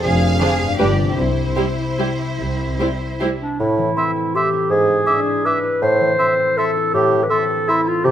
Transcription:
0.00 0.71 F2 soft
0.00 0.74 C4 soft
0.00 0.68 D4 soft
0.00 0.76 F4 soft
0.00 0.78 G#4 soft
0.00 0.39 G#4 soft
0.00 0.78 C5 soft
0.04 0.34 F1 soft
0.04 0.79 F5 medium
0.40 0.49 D3 soft
0.40 0.49 D4 soft
0.40 0.78 G#4 soft
0.40 0.48 G#4 soft
0.40 0.49 C5 soft
0.60 1.09 G2 soft
0.65 1.11 B3 soft
0.69 1.13 D4 soft
0.74 1.11 G4 soft
0.78 1.11 G1 soft
0.78 0.87 G3 soft
0.78 0.88 D4 soft
0.78 0.86 G4 soft
0.78 1.16 G4 soft
0.78 0.86 B4 soft
0.78 1.16 D5 soft
0.98 3.52 C3 soft
1.03 3.95 C4 soft
1.08 4.15 E4 soft
1.12 3.59 G4 soft
1.16 1.49 C2 soft
1.16 3.41 E4 soft
1.16 3.16 C5 soft
1.56 1.65 G3 soft
1.56 1.65 E4 soft
1.56 1.64 G4 soft
1.56 1.64 C5 soft
1.99 2.07 G3 soft
1.99 2.07 E4 soft
1.99 2.07 G4 soft
1.99 2.07 C5 soft
2.38 2.72 C2 soft
2.79 2.87 G3 soft
2.79 2.88 E4 soft
2.79 2.88 G4 soft
2.79 2.88 C5 soft
3.20 3.30 G3 soft
3.20 3.30 E4 soft
3.20 3.28 G4 soft
3.20 3.28 C5 soft
3.40 3.61 D4 soft
3.60 4.72 A2 soft
3.60 3.90 A2 soft
3.60 4.36 E4 medium
3.78 4.72 E3 soft
3.96 4.72 C4 soft
3.96 4.11 E5 soft
3.96 4.04 C6 soft
4.16 4.52 E4 soft
4.35 4.72 G4 medium
4.35 4.72 A4 soft
4.35 4.49 E5 soft
4.35 4.41 C6 soft
4.53 5.25 E4 soft
4.70 5.83 G#2 soft
4.70 5.01 G#2 medium
4.70 5.47 G#4 medium
4.88 5.83 G#3 soft
5.06 5.84 D4 soft
5.06 5.21 E5 soft
5.06 5.13 D6 soft
5.26 5.62 E4 soft
5.45 5.83 B4 soft
5.45 5.84 B4 medium
5.45 5.59 E5 soft
5.45 5.52 D6 soft
5.63 6.38 E4 soft
5.82 6.12 A2 soft
5.82 6.93 A2 soft
5.82 6.59 C5 medium
6.00 7.11 E3 soft
6.18 7.29 C4 soft
6.18 6.33 E5 soft
6.18 6.26 C6 soft
6.39 6.76 E4 soft
6.57 6.93 A4 medium
6.57 7.67 A4 soft
6.57 6.71 E5 soft
6.57 6.65 C6 soft
6.77 7.49 E4 soft
6.94 8.06 A2 soft
6.94 7.24 A2 soft
6.94 7.25 G4 medium
7.12 8.06 E3 soft
7.23 7.32 B4 soft
7.30 8.11 C4 soft
7.30 7.70 A4 medium
7.30 7.44 E5 soft
7.30 7.37 C6 soft
7.50 7.86 E4 soft
7.68 7.89 E4 medium
7.68 8.06 A4 soft
7.68 7.81 E5 soft
7.68 7.75 C6 soft
7.87 8.11 E4 soft
7.87 8.06 F4 medium
8.04 8.11 C3 soft
8.04 8.11 G4 medium

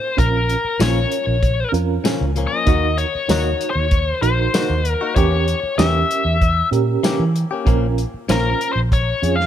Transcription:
0.00 0.19 C5 medium
0.17 0.55 A#1 medium
0.17 0.55 C#4 medium
0.17 0.56 F4 medium
0.17 0.56 A#4 medium
0.17 0.82 A#4 medium
0.17 kick medium
0.17 closed hi-hat medium
0.49 closed hi-hat medium
0.64 muted fingered electric bass stroke soft
0.79 1.04 A#1 medium
0.79 0.99 A#2 medium
0.79 0.99 F3 medium
0.79 1.00 A#3 medium
0.79 1.36 C#4 medium
0.79 1.00 C#4 medium
0.79 1.37 F4 medium
0.79 1.37 A#4 medium
0.79 1.71 C#5 medium
0.79 snare loud
0.79 closed hi-hat medium
0.79 tambourine loud
1.12 closed hi-hat medium
1.27 1.63 A#1 medium
1.43 kick medium
1.43 closed hi-hat medium
1.72 1.97 F2 medium
1.72 2.30 C#4 medium
1.72 2.30 F4 medium
1.72 2.30 A#4 medium
1.72 closed hi-hat medium
2.04 2.24 A#2 medium
2.04 2.24 F3 medium
2.04 2.24 A#3 medium
2.04 2.25 C#4 medium
2.04 snare loud
2.04 closed hi-hat medium
2.04 tambourine medium
2.21 2.45 C#2 medium
2.36 2.52 A#2 soft
2.36 2.53 F3 medium
2.36 2.52 A#3 medium
2.36 2.51 C#4 medium
2.36 closed hi-hat soft
2.47 3.00 D#5 medium
2.52 2.67 F3 soft
2.52 2.67 A#3 soft
2.52 2.67 C#4 soft
2.66 3.03 D#2 medium
2.66 2.86 D#3 medium
2.66 2.87 A#3 medium
2.66 3.04 D#4 medium
2.66 2.87 D#4 medium
2.66 3.05 F#4 soft
2.66 2.87 F#4 medium
2.66 3.05 A#4 medium
2.66 kick loud
2.66 closed hi-hat medium
2.98 3.69 C#5 medium
2.98 closed hi-hat soft
3.15 muted fingered electric bass stroke soft
3.28 3.53 D#2 medium
3.28 3.49 D#3 medium
3.28 3.49 A#3 medium
3.28 3.86 D#4 medium
3.28 3.49 D#4 medium
3.28 3.86 F#4 medium
3.28 3.49 F#4 medium
3.28 3.86 C#5 medium
3.28 snare loud
3.28 closed hi-hat medium
3.28 tambourine loud
3.61 closed hi-hat medium
3.70 4.10 C#5 medium
3.75 4.12 D#2 medium
3.91 kick medium
3.91 closed hi-hat medium
4.10 4.22 C5 medium
4.22 4.47 A#1 medium
4.22 4.79 D#4 medium
4.22 4.80 F#4 medium
4.22 4.80 A#4 medium
4.22 4.91 C5 medium
4.22 closed hi-hat medium
4.54 4.73 D#3 medium
4.54 4.74 A#3 medium
4.54 4.74 D#4 medium
4.54 4.74 F#4 medium
4.54 snare loud
4.54 closed hi-hat medium
4.54 tambourine loud
4.70 4.94 D#2 medium
4.85 closed hi-hat medium
4.91 5.15 A#4 medium
5.01 5.15 A#3 soft
5.01 5.17 D#4 soft
5.01 5.16 F#4 soft
5.16 5.53 E2 medium
5.16 5.36 E3 medium
5.16 5.36 A#3 medium
5.16 5.54 C#4 medium
5.16 5.36 C#4 medium
5.16 5.54 G4 medium
5.16 5.36 G4 medium
5.16 5.55 A#4 medium
5.16 5.80 C#5 medium
5.16 kick loud
5.16 closed hi-hat medium
5.48 closed hi-hat medium
5.63 muted fingered electric bass stroke soft
5.78 6.03 E2 loud
5.78 5.98 E3 medium
5.78 5.98 A#3 medium
5.78 6.35 C#4 medium
5.78 5.99 C#4 medium
5.78 6.35 G4 soft
5.78 5.99 G4 medium
5.78 6.36 A#4 medium
5.78 6.68 E5 medium
5.78 snare loud
5.78 closed hi-hat medium
5.78 tambourine loud
6.11 closed hi-hat medium
6.25 6.61 E2 medium
6.42 kick medium
6.42 closed hi-hat medium
6.71 6.96 A#2 medium
6.71 7.29 C#4 medium
6.71 7.29 G4 medium
6.71 7.29 A#4 medium
6.71 closed hi-hat medium
7.03 7.23 E3 medium
7.03 7.23 A#3 medium
7.03 7.24 C#4 medium
7.03 7.24 G4 medium
7.03 snare loud
7.03 closed hi-hat medium
7.03 tambourine loud
7.19 7.44 E3 medium
7.36 closed hi-hat medium
7.51 7.66 A#3 soft
7.51 7.67 C#4 soft
7.51 7.66 G4 medium
7.65 8.03 A#1 medium
7.65 7.85 A#2 medium
7.65 7.86 F3 medium
7.65 7.86 A#3 loud
7.65 8.04 C#4 medium
7.65 7.86 C#4 medium
7.65 8.04 F4 medium
7.65 8.04 A#4 medium
7.65 kick medium
7.65 closed hi-hat medium
7.98 closed hi-hat soft
8.14 muted fingered electric bass stroke soft
8.28 8.53 A#1 medium
8.28 8.48 A#2 medium
8.28 8.49 F3 medium
8.28 8.49 A#3 medium
8.28 8.86 C#4 medium
8.28 8.49 C#4 medium
8.28 8.86 F4 medium
8.28 8.72 A#4 medium
8.28 8.86 C5 medium
8.28 snare loud
8.28 closed hi-hat medium
8.28 tambourine loud
8.61 closed hi-hat medium
8.73 9.12 A#1 medium
8.73 8.78 C5 medium
8.92 9.35 C#5 medium
8.92 kick medium
8.92 closed hi-hat medium
9.22 9.46 F2 medium
9.22 9.46 C#4 medium
9.22 9.46 F4 medium
9.22 9.46 G#4 medium
9.22 closed hi-hat medium
9.36 9.46 F5 medium
9.40 snare soft

